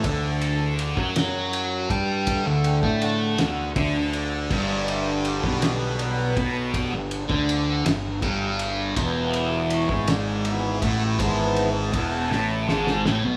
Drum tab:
CC |------------|------------|x-----------|------------|
RD |x-x-x-x-x-x-|x-x-x-x-x-x-|--x-x-x-x-x-|x-x-x-x-x-x-|
SD |------o-----|------o-----|------o-----|------o-----|
BD |o----o----o-|o--o----o---|o----o----o-|o--o----o---|

CC |------------|------------|
RD |x-x-x-x-x-x-|x-x-x-------|
SD |------o-----|------o-ooo-|
BD |o----o----o-|o---o-------|